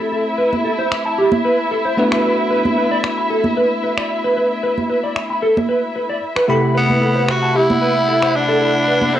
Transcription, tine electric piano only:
0.00 1.94 A3 medium
0.00 1.95 C4 medium
0.00 1.95 E4 medium
0.00 1.95 G4 medium
0.00 1.95 B5 medium
1.97 6.19 A3 medium
1.97 6.19 B3 medium
1.97 6.20 D4 medium
1.97 6.20 F#4 medium
1.97 6.20 B4 medium
6.48 9.20 C3 medium
6.48 9.20 A3 medium
6.48 9.20 E4 medium
6.48 9.20 G4 medium
6.48 9.20 B5 medium

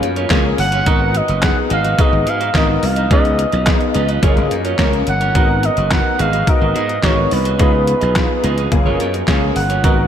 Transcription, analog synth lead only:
0.60 1.18 F#5 loud
1.17 1.44 D#5 loud
1.45 1.57 F#5 loud
1.73 2.02 F5 loud
2.01 2.30 D#5 loud
2.29 2.58 F5 loud
2.57 2.86 D#5 medium
2.85 3.12 F5 loud
3.13 4.20 D#5 medium
5.09 5.66 F#5 loud
5.65 5.92 D#5 loud
5.93 6.22 F#5 medium
6.21 6.51 F5 loud
6.49 6.76 D#5 loud
6.76 7.06 D#5 loud
7.04 7.34 C#5 medium
7.32 7.60 B4 medium
7.61 8.68 B4 medium
9.56 10.07 F#5 loud

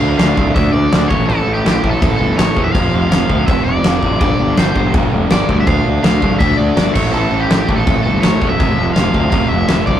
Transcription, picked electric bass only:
0.00 0.13 D2 loud
0.19 0.31 D2 medium
0.37 0.50 C2 medium
0.55 0.68 D2 loud
0.74 0.86 D2 loud
0.92 1.05 D2 loud
1.11 1.23 A1 medium
1.28 1.41 A1 loud
1.47 1.59 A1 medium
1.65 1.78 A1 loud
1.83 1.96 A1 medium
2.02 2.14 A1 loud
2.20 2.32 G1 loud
2.37 2.50 A1 loud
2.56 2.69 E2 medium
2.74 2.87 F1 loud
2.92 3.05 F1 medium
3.11 3.23 F1 loud
3.29 3.42 D2 medium
3.48 3.60 F1 medium
3.66 3.79 F1 loud
3.85 3.97 F1 loud
4.02 4.15 A1 medium
4.21 4.33 G1 loud
4.39 4.52 G1 medium
4.57 4.70 G1 medium
4.75 4.88 G1 medium
4.94 5.07 G1 medium
5.13 5.25 F1 loud
5.31 5.43 G1 loud
5.49 5.61 D2 medium
5.67 5.80 D2 loud
5.86 5.98 D2 medium
6.04 6.16 D2 loud
6.22 6.34 C2 medium
6.40 6.53 D2 medium
6.59 6.71 D2 loud
6.77 6.89 G1 loud
6.95 7.08 A1 medium
7.14 7.26 A1 loud
7.32 7.44 A1 medium
7.50 7.62 A1 medium
7.69 7.81 A1 loud
7.87 7.99 A1 loud
8.05 8.18 G1 loud
8.24 8.36 A1 loud
8.42 8.54 E1 medium
8.60 8.72 F1 loud
8.78 8.90 F1 loud
8.96 9.08 F1 loud
9.14 9.27 D2 medium
9.32 9.45 F1 loud
9.51 9.63 F1 loud
9.69 9.81 F1 loud
9.87 10.00 C2 medium

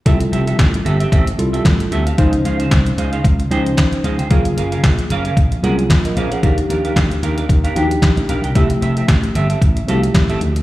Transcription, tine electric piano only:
0.06 0.87 G3 medium
0.06 0.87 E4 medium
0.06 0.87 F4 medium
0.06 0.87 A4 medium
1.38 2.00 G3 medium
1.38 2.00 E4 medium
1.38 2.00 F4 medium
1.38 2.00 A4 loud
2.18 2.99 F3 medium
2.18 2.99 C#4 medium
2.18 2.99 D#4 medium
2.18 2.99 C5 medium
3.51 4.12 F3 medium
3.51 4.12 C#4 medium
3.51 4.13 D#4 medium
3.51 4.13 C5 loud
4.30 5.11 F#3 medium
4.30 5.11 A#3 medium
4.30 5.12 F4 medium
4.30 5.12 G#4 medium
5.63 6.25 F#3 medium
5.63 6.25 A#3 medium
5.63 6.25 F4 medium
5.63 5.90 G#4 medium
6.05 6.16 A#4 medium
6.05 6.16 D#5 medium
6.17 6.31 C5 medium
6.17 6.31 F5 medium
6.32 6.57 G#4 medium
6.32 6.57 C#5 medium
6.42 7.24 F3 medium
6.42 7.24 D4 medium
6.42 7.24 D#4 medium
6.42 7.24 G4 medium
7.75 8.37 F3 medium
7.75 8.37 D4 medium
7.75 8.37 D#4 medium
7.75 7.83 F#4 medium
7.83 8.41 G4 loud
8.55 9.36 F3 medium
8.55 9.36 A3 medium
8.55 9.36 E4 medium
8.55 9.37 G4 medium
9.88 10.49 F3 medium
9.88 10.50 A3 medium
9.88 10.50 E4 medium
9.88 9.96 F#4 medium
9.95 10.53 G4 medium

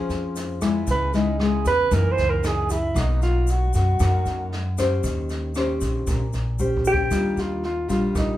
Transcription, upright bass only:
0.09 0.83 F2 medium
0.87 1.61 C#2 loud
1.65 1.90 E2 medium
1.92 2.04 F#2 loud
2.17 2.91 C#2 medium
2.96 3.70 B1 medium
3.74 3.98 F#2 loud
4.00 4.12 F#2 loud
4.26 5.00 F#2 medium
5.04 5.78 D#2 medium
5.81 6.06 A#1 loud
6.07 6.19 A#1 loud
6.34 7.08 A#1 medium
7.11 7.36 D#2 medium
7.37 7.86 D#2 medium
7.89 8.14 A#1 medium
8.15 8.37 A#1 medium

